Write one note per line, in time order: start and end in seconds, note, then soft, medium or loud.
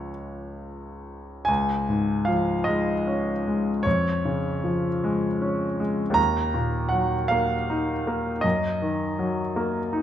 0.00 1.42 C#2 soft
0.00 1.43 F3 soft
0.00 1.43 G#3 soft
0.00 1.44 C#4 soft
0.00 1.51 C#5 medium
1.45 3.81 C#2 medium
1.45 2.27 G#5 medium
1.89 2.53 G#2 soft
2.25 2.92 F3 soft
2.25 2.67 F5 medium
2.64 3.31 G#3 soft
2.64 3.83 D#5 medium
3.07 3.70 C#4 soft
3.47 3.86 G#3 soft
3.83 6.14 F2 soft
3.83 5.79 C#5 medium
4.25 4.87 C#3 soft
4.64 5.27 F3 soft
5.04 5.66 G#3 soft
5.42 6.02 C#4 soft
5.80 6.17 G#3 soft
6.10 8.37 D#2 medium
6.10 6.90 A#5 medium
6.54 7.15 A#2 soft
6.89 7.54 F#3 soft
6.89 7.29 F#5 medium
7.28 7.92 A#3 soft
7.28 8.43 F5 medium
7.70 8.30 D#4 soft
8.07 8.45 A#3 soft
8.41 10.02 F#2 soft
8.41 10.02 D#5 medium
8.82 9.41 D#3 soft
9.19 9.78 F#3 soft
9.56 10.02 A#3 soft
9.93 10.02 D#4 medium